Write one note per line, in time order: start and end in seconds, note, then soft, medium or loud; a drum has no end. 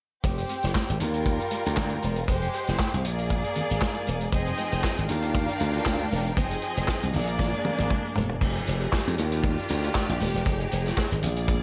0.23 0.43 F1 medium
0.23 0.99 C4 medium
0.23 0.99 G4 medium
0.23 kick medium
0.23 closed hi-hat medium
0.23 muted conga soft
0.38 closed hi-hat soft
0.49 closed hi-hat medium
0.49 muted conga soft
0.63 0.72 F1 medium
0.63 snare soft
0.63 closed hi-hat soft
0.75 kick loud
0.75 snare loud
0.75 clap medium
0.75 high conga medium
0.88 0.98 G#1 medium
0.88 closed hi-hat soft
1.00 1.38 D#2 medium
1.00 2.26 G3 medium
1.00 2.26 F4 medium
1.00 2.26 A#4 medium
1.00 closed hi-hat medium
1.00 low conga medium
1.14 closed hi-hat soft
1.25 kick loud
1.25 closed hi-hat medium
1.25 muted conga soft
1.40 closed hi-hat soft
1.51 closed hi-hat medium
1.51 muted conga soft
1.65 1.75 D2 medium
1.65 closed hi-hat soft
1.77 1.96 D2 medium
1.77 kick loud
1.77 snare loud
1.77 clap medium
1.77 high conga medium
1.90 closed hi-hat soft
2.02 2.22 E1 medium
2.02 closed hi-hat medium
2.02 high conga medium
2.16 closed hi-hat soft
2.28 2.47 F1 medium
2.28 3.03 G#3 medium
2.28 3.03 G4 medium
2.28 3.03 C5 medium
2.28 kick medium
2.28 closed hi-hat medium
2.28 muted conga soft
2.42 closed hi-hat soft
2.53 closed hi-hat medium
2.67 2.77 F1 medium
2.67 snare soft
2.67 closed hi-hat soft
2.79 kick loud
2.79 snare medium
2.79 clap medium
2.79 high conga medium
2.93 3.06 C2 medium
2.93 closed hi-hat soft
3.05 3.42 A#1 loud
3.05 4.30 A#3 medium
3.05 4.30 G#4 medium
3.05 4.30 D5 medium
3.05 closed hi-hat medium
3.19 closed hi-hat soft
3.30 kick loud
3.30 closed hi-hat medium
3.30 muted conga soft
3.44 closed hi-hat soft
3.55 closed hi-hat medium
3.55 muted conga soft
3.55 low conga medium
3.70 3.79 G#1 medium
3.70 closed hi-hat soft
3.81 kick medium
3.81 snare loud
3.81 clap medium
3.81 high conga medium
3.94 closed hi-hat soft
4.07 4.26 E1 medium
4.07 closed hi-hat medium
4.07 high conga medium
4.20 closed hi-hat soft
4.32 4.51 F1 medium
4.32 5.09 F3 medium
4.32 5.07 C4 medium
4.32 5.09 D#4 medium
4.32 5.08 G#4 medium
4.32 5.09 G#4 medium
4.32 5.08 D#5 medium
4.32 5.08 G5 medium
4.32 kick loud
4.32 closed hi-hat medium
4.32 muted conga soft
4.46 closed hi-hat soft
4.57 closed hi-hat medium
4.57 muted conga soft
4.71 4.81 F1 medium
4.71 closed hi-hat soft
4.84 kick loud
4.84 snare loud
4.84 clap medium
4.84 high conga medium
4.97 5.07 G#1 medium
4.97 closed hi-hat soft
5.08 5.47 D#2 loud
5.08 6.35 D#3 medium
5.08 6.36 D4 medium
5.08 6.34 D4 medium
5.08 6.35 F4 medium
5.08 6.34 A#4 medium
5.08 6.34 F5 medium
5.08 7.11 G5 medium
5.08 closed hi-hat medium
5.08 low conga medium
5.22 closed hi-hat soft
5.34 kick loud
5.34 closed hi-hat medium
5.34 muted conga medium
5.48 closed hi-hat soft
5.60 5.79 D2 medium
5.60 closed hi-hat medium
5.60 muted conga medium
5.74 closed hi-hat soft
5.86 6.05 D2 medium
5.86 kick medium
5.86 snare loud
5.86 clap medium
5.86 high conga medium
5.99 closed hi-hat soft
6.11 6.30 E1 medium
6.11 open hi-hat medium
6.11 high conga medium
6.25 closed hi-hat soft
6.37 6.56 F1 loud
6.37 7.13 F3 medium
6.37 7.12 C4 medium
6.37 7.13 D#4 medium
6.37 7.13 G#4 medium
6.37 7.12 G#4 medium
6.37 7.12 D#5 medium
6.37 kick loud
6.37 closed hi-hat medium
6.37 muted conga soft
6.51 closed hi-hat soft
6.62 closed hi-hat medium
6.76 6.85 F1 medium
6.76 closed hi-hat soft
6.88 kick medium
6.88 snare loud
6.88 clap medium
6.88 high conga medium
7.02 7.11 C2 medium
7.02 closed hi-hat soft
7.13 7.52 A#1 medium
7.13 8.40 G#3 medium
7.13 8.40 A#3 medium
7.13 8.39 A#3 medium
7.13 8.40 D4 medium
7.13 8.39 G#4 medium
7.13 8.39 D5 medium
7.13 open hi-hat medium
7.13 low conga medium
7.27 closed hi-hat medium
7.39 kick loud
7.39 snare medium
7.39 muted conga medium
7.39 low conga medium
7.65 high tom medium
7.65 muted conga medium
7.65 low conga medium
7.78 7.88 G#1 medium
7.78 high tom medium
7.90 kick medium
7.90 mid tom medium
7.90 high conga medium
8.15 8.35 E1 medium
8.15 floor tom loud
8.15 high conga medium
8.29 floor tom medium
8.41 8.60 F1 loud
8.41 9.17 F3 medium
8.41 9.17 D#4 medium
8.41 9.16 G4 medium
8.41 9.17 G#4 medium
8.41 kick loud
8.41 crash medium
8.41 muted conga soft
8.55 closed hi-hat soft
8.67 8.86 F1 medium
8.67 closed hi-hat medium
8.80 closed hi-hat soft
8.93 kick loud
8.93 snare loud
8.93 clap medium
8.93 high conga medium
9.07 9.16 F2 medium
9.17 9.56 D#2 loud
9.17 10.44 D#3 medium
9.17 10.44 D4 medium
9.17 10.44 F4 medium
9.17 11.20 G4 medium
9.17 closed hi-hat medium
9.32 closed hi-hat medium
9.43 kick loud
9.43 closed hi-hat medium
9.43 muted conga medium
9.57 closed hi-hat soft
9.69 9.88 D2 medium
9.69 closed hi-hat medium
9.69 muted conga soft
9.84 closed hi-hat soft
9.95 kick loud
9.95 snare loud
9.95 clap medium
9.95 high conga medium
10.08 10.18 A#1 medium
10.08 closed hi-hat soft
10.20 10.31 D#1 loud
10.20 open hi-hat medium
10.20 high conga medium
10.34 10.43 E1 medium
10.34 closed hi-hat soft
10.45 10.65 F1 loud
10.45 11.22 F3 medium
10.45 11.22 D#4 medium
10.45 11.21 G#4 medium
10.45 kick loud
10.45 closed hi-hat medium
10.45 muted conga soft
10.60 closed hi-hat soft
10.71 10.91 F1 loud
10.71 closed hi-hat medium
10.71 muted conga soft
10.86 snare soft
10.86 closed hi-hat soft
10.97 kick loud
10.97 snare loud
10.97 clap medium
10.97 high conga medium
11.11 11.20 G#1 medium
11.11 closed hi-hat soft
11.22 11.60 A#1 medium
11.22 11.63 A#3 medium
11.22 11.63 G#4 medium
11.22 11.63 D5 medium
11.22 closed hi-hat medium
11.22 low conga medium
11.36 closed hi-hat soft
11.48 kick loud
11.48 closed hi-hat medium
11.48 muted conga medium